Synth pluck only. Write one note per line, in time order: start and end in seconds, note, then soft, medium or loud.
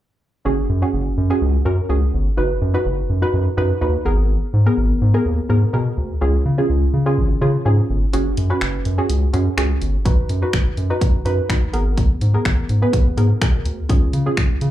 0.45 0.76 C#4 medium
0.45 0.76 F#4 medium
0.45 0.77 G#4 medium
0.82 1.22 C#4 medium
0.82 1.23 F#4 medium
0.82 1.23 G#4 medium
1.30 1.60 C#4 medium
1.30 1.60 F#4 medium
1.30 1.61 G#4 loud
1.65 1.86 C#4 medium
1.65 1.86 F#4 medium
1.65 1.86 A#4 medium
1.89 2.31 C#4 medium
1.89 2.31 F#4 medium
1.89 2.31 G#4 medium
2.37 2.68 D#4 medium
2.37 2.68 F#4 medium
2.37 2.69 B4 medium
2.74 3.14 D#4 medium
2.74 3.15 F#4 medium
2.74 3.15 B4 medium
3.22 3.52 D#4 medium
3.22 3.52 F#4 medium
3.22 3.53 B4 loud
3.57 3.78 D#4 medium
3.57 3.78 F#4 medium
3.57 3.78 B4 medium
3.81 4.05 D#4 medium
3.81 4.05 F#4 medium
3.81 4.06 B4 medium
4.05 4.57 B3 medium
4.05 4.57 G#4 medium
4.05 4.57 A#4 medium
4.66 5.06 B3 medium
4.66 5.07 G#4 medium
4.66 5.07 A#4 medium
5.14 5.44 B3 medium
5.14 5.44 G#4 medium
5.14 5.45 A#4 loud
5.49 5.70 B3 medium
5.49 5.70 G#4 medium
5.49 5.70 A#4 medium
5.73 6.15 B3 medium
5.73 6.15 G#4 medium
5.73 6.15 A#4 medium
6.21 6.52 C#4 medium
6.21 6.52 F4 medium
6.21 6.53 G#4 medium
6.58 6.98 C#4 medium
6.58 6.99 F4 medium
6.58 6.99 G#4 medium
7.06 7.36 C#4 medium
7.06 7.36 F4 medium
7.06 7.36 G#4 loud
7.41 7.62 C#4 medium
7.41 7.62 F4 medium
7.41 7.62 G#4 medium
7.65 8.07 C#4 medium
7.65 8.07 F4 medium
7.65 8.07 G#4 medium
8.13 8.44 C#4 medium
8.13 8.44 F#4 medium
8.13 8.45 G#4 medium
8.50 8.90 C#4 medium
8.50 8.91 F#4 medium
8.50 8.91 B4 medium
8.98 9.28 C#4 medium
8.98 9.28 F#4 medium
8.98 9.29 G#4 medium
9.33 9.54 C#4 medium
9.33 9.54 F#4 medium
9.33 9.54 G#4 medium
9.57 9.99 C#4 medium
9.57 9.99 F#4 medium
9.57 9.99 G#4 medium
10.05 10.36 D#4 medium
10.05 10.36 F#4 medium
10.05 10.37 B4 medium
10.42 10.82 D#4 medium
10.42 10.83 F#4 medium
10.42 10.83 B4 medium
10.90 11.20 D#4 medium
10.90 11.20 F#4 medium
10.90 11.21 B4 medium
11.25 11.46 D#4 medium
11.25 11.46 F#4 medium
11.25 11.46 B4 medium
11.49 11.73 D#4 medium
11.49 11.73 F#4 medium
11.49 11.74 B4 medium
11.73 12.25 B3 medium
11.73 12.25 G#4 medium
11.73 12.25 A#4 loud
12.34 12.74 B3 medium
12.34 12.75 G#4 medium
12.34 12.75 A#4 medium
12.82 13.12 B3 medium
12.82 13.12 G#4 medium
12.82 13.13 B4 loud
13.17 13.38 B3 medium
13.17 13.38 G#4 medium
13.17 13.38 A#4 medium
13.41 13.83 B3 medium
13.41 13.83 G#4 medium
13.41 13.83 A#4 medium
13.89 14.20 C#4 medium
13.89 14.20 F4 medium
13.89 14.21 G#4 medium
14.26 14.66 C#4 medium
14.26 14.67 F4 medium
14.26 14.67 G#4 medium